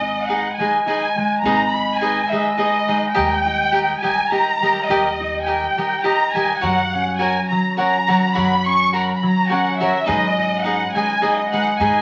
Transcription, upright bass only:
0, 0, Header, 1, 2, 480
1, 0, Start_track
1, 0, Key_signature, 5, "minor"
1, 0, Tempo, 575264
1, 1206, Time_signature, 3, 2, 24, 8
1, 10028, End_track
2, 0, Start_track
2, 0, Title_t, "Upright bass"
2, 0, Program_c, 0, 32
2, 0, Note_on_c, 0, 32, 67
2, 379, Note_off_c, 0, 32, 0
2, 1201, Note_on_c, 0, 32, 80
2, 1827, Note_off_c, 0, 32, 0
2, 2646, Note_on_c, 0, 39, 81
2, 3269, Note_off_c, 0, 39, 0
2, 4085, Note_on_c, 0, 39, 76
2, 4711, Note_off_c, 0, 39, 0
2, 5525, Note_on_c, 0, 42, 71
2, 6153, Note_off_c, 0, 42, 0
2, 6977, Note_on_c, 0, 42, 72
2, 7596, Note_off_c, 0, 42, 0
2, 8412, Note_on_c, 0, 44, 87
2, 9032, Note_off_c, 0, 44, 0
2, 9845, Note_on_c, 0, 44, 88
2, 10028, Note_off_c, 0, 44, 0
2, 10028, End_track
0, 0, End_of_file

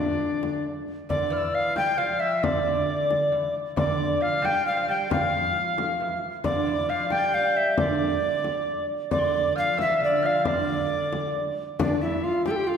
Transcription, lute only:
0, 0, Header, 1, 2, 480
1, 0, Start_track
1, 0, Key_signature, -1, "minor"
1, 0, Tempo, 445765
1, 1179, Time_signature, 6, 3, 24, 8
1, 13751, End_track
2, 0, Start_track
2, 0, Title_t, "Lute"
2, 0, Program_c, 0, 24
2, 0, Note_on_c, 0, 38, 65
2, 658, Note_off_c, 0, 38, 0
2, 1175, Note_on_c, 0, 50, 69
2, 1397, Note_off_c, 0, 50, 0
2, 1401, Note_on_c, 0, 52, 78
2, 1899, Note_on_c, 0, 55, 85
2, 1905, Note_off_c, 0, 52, 0
2, 2125, Note_off_c, 0, 55, 0
2, 2129, Note_on_c, 0, 53, 76
2, 2618, Note_on_c, 0, 50, 75
2, 2630, Note_off_c, 0, 53, 0
2, 3570, Note_off_c, 0, 50, 0
2, 3575, Note_on_c, 0, 52, 56
2, 3801, Note_off_c, 0, 52, 0
2, 4053, Note_on_c, 0, 50, 78
2, 4503, Note_off_c, 0, 50, 0
2, 4527, Note_on_c, 0, 53, 74
2, 4755, Note_off_c, 0, 53, 0
2, 4760, Note_on_c, 0, 55, 93
2, 4993, Note_off_c, 0, 55, 0
2, 5010, Note_on_c, 0, 53, 73
2, 5055, Note_off_c, 0, 53, 0
2, 5068, Note_on_c, 0, 53, 60
2, 5121, Note_off_c, 0, 53, 0
2, 5134, Note_on_c, 0, 53, 73
2, 5253, Note_off_c, 0, 53, 0
2, 5258, Note_on_c, 0, 55, 89
2, 5487, Note_off_c, 0, 55, 0
2, 5492, Note_on_c, 0, 53, 81
2, 6464, Note_on_c, 0, 52, 56
2, 6486, Note_off_c, 0, 53, 0
2, 6686, Note_off_c, 0, 52, 0
2, 6932, Note_on_c, 0, 50, 73
2, 7174, Note_off_c, 0, 50, 0
2, 7178, Note_on_c, 0, 52, 72
2, 7419, Note_on_c, 0, 53, 77
2, 7427, Note_off_c, 0, 52, 0
2, 7662, Note_off_c, 0, 53, 0
2, 7666, Note_on_c, 0, 55, 90
2, 8372, Note_on_c, 0, 50, 70
2, 8405, Note_off_c, 0, 55, 0
2, 9533, Note_off_c, 0, 50, 0
2, 9808, Note_on_c, 0, 50, 77
2, 10290, Note_on_c, 0, 53, 88
2, 10309, Note_off_c, 0, 50, 0
2, 10525, Note_on_c, 0, 52, 79
2, 10542, Note_off_c, 0, 53, 0
2, 10765, Note_off_c, 0, 52, 0
2, 10769, Note_on_c, 0, 50, 68
2, 11011, Note_on_c, 0, 53, 78
2, 11021, Note_off_c, 0, 50, 0
2, 11260, Note_on_c, 0, 50, 70
2, 11262, Note_off_c, 0, 53, 0
2, 12175, Note_off_c, 0, 50, 0
2, 13751, End_track
0, 0, End_of_file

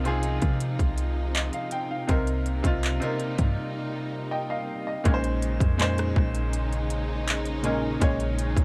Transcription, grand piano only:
0, 0, Header, 1, 2, 480
1, 0, Start_track
1, 0, Tempo, 740741
1, 1355, Time_signature, 4, 2, 24, 8
1, 5603, End_track
2, 0, Start_track
2, 0, Title_t, "Grand piano"
2, 0, Program_c, 0, 0
2, 0, Control_c, 0, 64, 127
2, 0, Note_on_c, 0, 48, 76
2, 0, Note_on_c, 0, 60, 75
2, 0, Note_on_c, 0, 65, 72
2, 0, Note_on_c, 0, 70, 85
2, 25, Note_off_c, 0, 48, 0
2, 25, Note_on_c, 0, 48, 88
2, 32, Note_off_c, 0, 60, 0
2, 32, Note_on_c, 0, 60, 81
2, 39, Note_off_c, 0, 65, 0
2, 39, Note_on_c, 0, 65, 78
2, 47, Note_on_c, 0, 68, 100
2, 874, Note_on_c, 0, 75, 60
2, 896, Note_off_c, 0, 48, 0
2, 900, Note_off_c, 0, 60, 0
2, 904, Note_off_c, 0, 65, 0
2, 907, Note_off_c, 0, 68, 0
2, 988, Note_off_c, 0, 75, 0
2, 996, Note_on_c, 0, 77, 67
2, 1109, Note_off_c, 0, 77, 0
2, 1116, Note_on_c, 0, 79, 73
2, 1229, Note_off_c, 0, 79, 0
2, 1236, Note_on_c, 0, 77, 59
2, 1344, Note_on_c, 0, 48, 85
2, 1352, Note_on_c, 0, 60, 76
2, 1360, Note_on_c, 0, 63, 75
2, 1365, Note_off_c, 0, 70, 0
2, 1365, Control_c, 0, 64, 0
2, 1367, Note_on_c, 0, 70, 89
2, 1464, Note_off_c, 0, 77, 0
2, 1465, Control_c, 0, 64, 127
2, 1674, Note_off_c, 0, 48, 0
2, 1678, Note_off_c, 0, 60, 0
2, 1682, Note_off_c, 0, 63, 0
2, 1686, Note_off_c, 0, 70, 0
2, 1703, Note_on_c, 0, 48, 83
2, 1711, Note_on_c, 0, 60, 75
2, 1719, Note_on_c, 0, 63, 75
2, 1726, Note_on_c, 0, 65, 92
2, 1926, Note_off_c, 0, 48, 0
2, 1930, Note_off_c, 0, 60, 0
2, 1933, Note_off_c, 0, 63, 0
2, 1937, Note_off_c, 0, 65, 0
2, 1943, Note_on_c, 0, 48, 91
2, 1951, Note_on_c, 0, 60, 75
2, 1958, Note_on_c, 0, 63, 80
2, 1966, Note_on_c, 0, 70, 95
2, 2795, Note_on_c, 0, 75, 67
2, 2796, Note_on_c, 0, 79, 68
2, 2816, Note_off_c, 0, 48, 0
2, 2819, Note_off_c, 0, 60, 0
2, 2823, Note_off_c, 0, 63, 0
2, 2827, Note_off_c, 0, 70, 0
2, 2906, Note_off_c, 0, 75, 0
2, 2907, Note_off_c, 0, 79, 0
2, 2916, Note_on_c, 0, 75, 66
2, 2916, Note_on_c, 0, 77, 68
2, 3143, Note_off_c, 0, 77, 0
2, 3146, Note_off_c, 0, 75, 0
2, 3155, Note_on_c, 0, 75, 64
2, 3265, Note_on_c, 0, 46, 90
2, 3270, Note_on_c, 0, 56, 82
2, 3276, Note_on_c, 0, 61, 74
2, 3282, Note_on_c, 0, 63, 78
2, 3285, Control_c, 0, 64, 0
2, 3288, Note_on_c, 0, 70, 74
2, 3323, Note_off_c, 0, 70, 0
2, 3329, Note_on_c, 0, 72, 93
2, 3383, Note_off_c, 0, 75, 0
2, 3394, Control_c, 0, 64, 127
2, 3703, Note_off_c, 0, 46, 0
2, 3706, Note_off_c, 0, 56, 0
2, 3709, Note_off_c, 0, 61, 0
2, 3711, Note_off_c, 0, 63, 0
2, 3735, Note_off_c, 0, 72, 0
2, 3744, Note_on_c, 0, 46, 90
2, 3750, Note_on_c, 0, 56, 84
2, 3756, Note_on_c, 0, 61, 83
2, 3761, Note_on_c, 0, 63, 81
2, 3767, Note_on_c, 0, 72, 100
2, 4616, Note_off_c, 0, 46, 0
2, 4619, Note_off_c, 0, 56, 0
2, 4622, Note_off_c, 0, 61, 0
2, 4625, Note_off_c, 0, 63, 0
2, 4627, Note_off_c, 0, 72, 0
2, 4944, Note_on_c, 0, 46, 77
2, 4950, Note_on_c, 0, 56, 74
2, 4956, Note_on_c, 0, 61, 73
2, 4961, Note_on_c, 0, 63, 73
2, 4967, Note_on_c, 0, 70, 84
2, 5166, Note_off_c, 0, 46, 0
2, 5169, Note_off_c, 0, 56, 0
2, 5172, Note_off_c, 0, 61, 0
2, 5175, Note_off_c, 0, 63, 0
2, 5177, Note_off_c, 0, 70, 0
2, 5184, Note_on_c, 0, 46, 89
2, 5190, Note_on_c, 0, 56, 80
2, 5195, Note_on_c, 0, 61, 80
2, 5201, Note_on_c, 0, 63, 81
2, 5207, Note_on_c, 0, 73, 94
2, 5603, Note_off_c, 0, 46, 0
2, 5603, Note_off_c, 0, 56, 0
2, 5603, Note_off_c, 0, 61, 0
2, 5603, Note_off_c, 0, 63, 0
2, 5603, Note_off_c, 0, 73, 0
2, 5603, End_track
0, 0, End_of_file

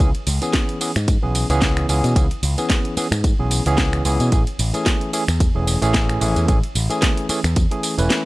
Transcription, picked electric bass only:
0, 0, Header, 1, 3, 480
1, 0, Start_track
1, 0, Time_signature, 4, 2, 24, 8
1, 0, Key_signature, 4, "minor"
1, 0, Tempo, 540541
1, 7327, End_track
2, 0, Start_track
2, 0, Title_t, "Picked electric bass"
2, 0, Program_c, 0, 34
2, 0, Note_on_c, 0, 37, 100
2, 100, Note_off_c, 0, 37, 0
2, 240, Note_on_c, 0, 37, 98
2, 341, Note_off_c, 0, 37, 0
2, 854, Note_on_c, 0, 44, 104
2, 1030, Note_off_c, 0, 44, 0
2, 1093, Note_on_c, 0, 35, 85
2, 1270, Note_off_c, 0, 35, 0
2, 1329, Note_on_c, 0, 37, 94
2, 1637, Note_off_c, 0, 37, 0
2, 1677, Note_on_c, 0, 37, 101
2, 1780, Note_off_c, 0, 37, 0
2, 1813, Note_on_c, 0, 47, 96
2, 1894, Note_off_c, 0, 47, 0
2, 1918, Note_on_c, 0, 37, 97
2, 2020, Note_off_c, 0, 37, 0
2, 2156, Note_on_c, 0, 37, 100
2, 2259, Note_off_c, 0, 37, 0
2, 2767, Note_on_c, 0, 44, 104
2, 2947, Note_off_c, 0, 44, 0
2, 3011, Note_on_c, 0, 35, 85
2, 3189, Note_off_c, 0, 35, 0
2, 3250, Note_on_c, 0, 37, 97
2, 3557, Note_off_c, 0, 37, 0
2, 3597, Note_on_c, 0, 37, 106
2, 3700, Note_off_c, 0, 37, 0
2, 3729, Note_on_c, 0, 47, 96
2, 3812, Note_off_c, 0, 47, 0
2, 3837, Note_on_c, 0, 33, 101
2, 3940, Note_off_c, 0, 33, 0
2, 4078, Note_on_c, 0, 33, 99
2, 4180, Note_off_c, 0, 33, 0
2, 4691, Note_on_c, 0, 40, 107
2, 4869, Note_off_c, 0, 40, 0
2, 4930, Note_on_c, 0, 28, 88
2, 5108, Note_off_c, 0, 28, 0
2, 5170, Note_on_c, 0, 33, 94
2, 5477, Note_off_c, 0, 33, 0
2, 5517, Note_on_c, 0, 33, 106
2, 5620, Note_off_c, 0, 33, 0
2, 5650, Note_on_c, 0, 40, 96
2, 5732, Note_off_c, 0, 40, 0
2, 5759, Note_on_c, 0, 33, 103
2, 5861, Note_off_c, 0, 33, 0
2, 5997, Note_on_c, 0, 33, 102
2, 6100, Note_off_c, 0, 33, 0
2, 6609, Note_on_c, 0, 40, 103
2, 6788, Note_off_c, 0, 40, 0
2, 7090, Note_on_c, 0, 28, 92
2, 7172, Note_off_c, 0, 28, 0
2, 7327, End_track
3, 0, Start_track
3, 0, Title_t, "Muted picked electric bass strokes"
3, 2637, Note_on_c, 9, 29, 44
3, 2725, Note_off_c, 9, 29, 0
3, 6474, Note_on_c, 9, 29, 41
3, 6563, Note_off_c, 9, 29, 0
3, 7327, End_track
0, 0, End_of_file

